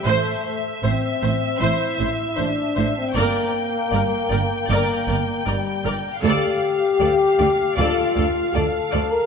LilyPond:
<<
  \new Staff \with { instrumentName = "Violin section" } { \time 4/4 \key d \minor \tempo 4 = 78 e''1 | g''1 | f''1 | }
  \new Staff \with { instrumentName = "Violin section" } { \time 4/4 \key d \minor c''8 r8 c''8 c''8 c''8 c''8 c''8 c''8 | d''8 r8 d''8 d''8 d''8 d''8 d''8 d''8 | d''8 r8 d''8 d''8 d''8 d''8 d''8 d''8 | }
  \new Staff \with { instrumentName = "Viola section" } { \time 4/4 \key d \minor c''8 r8 c''8 c''8 c''8 c''8 c''8 c''8 | bes'8 r8 bes'8 bes'8 bes'8 bes'8 bes'8 bes'8 | a'8 r8 a'8 a'8 a'8 a'8 a'8 a'8 | }
  \new Staff \with { instrumentName = "French horn section" } { \time 4/4 \key d \minor a4 c'4 e'4 d'8. c'16 | bes2 bes4 g8 r8 | g'2 f'4 a'8. bes'16 | }
  \new Staff \with { instrumentName = "Cello section" } { \clef bass \time 4/4 \key d \minor a,8 r8 a,8 a,8 a,8 a,8 a,8 a,8 | g,8 r8 g,8 g,8 g,8 g,8 g,8 g,8 | d,8 r8 d,8 d,8 d,8 d,8 d,8 d,8 | }
  \new Staff \with { instrumentName = "Double bass section" } { \clef bass \time 4/4 \key d \minor a,,8 r8 a,,8 a,,8 a,,8 a,,8 a,,8 a,,8 | g,,8 r8 g,,8 g,,8 g,,8 g,,8 g,,8 g,,8 | d,8 r8 d,8 d,8 d,8 d,8 d,8 d,8 | }
>>